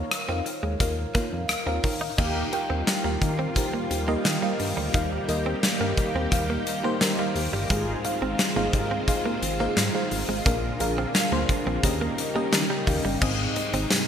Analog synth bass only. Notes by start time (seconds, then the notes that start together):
0.29 F2
0.63 D#2
0.80 D#2
1.15 F2
1.32 F2
1.49 D#2
1.67 D#2
1.84 D#3
2.18 D#2
2.70 D#2
3.05 D#2
3.22 D#3
3.91 D#2
4.25 D#3
4.60 G2
4.77 D2
4.94 D#2
5.29 D#2
5.81 G2
6.15 D#2
6.32 D#2
7.01 D#3
7.35 D#2
7.53 G1
7.70 G#1
8.22 G#1
8.56 G#1
8.73 G#2
9.42 G#1
9.77 G#2
10.11 G#1
10.28 G#1
10.46 A#1
10.80 A#1
11.32 D2
11.66 A#1
11.83 D#2
12.53 D#3
12.87 D#2
13.04 G1
13.22 G#1
13.73 G#1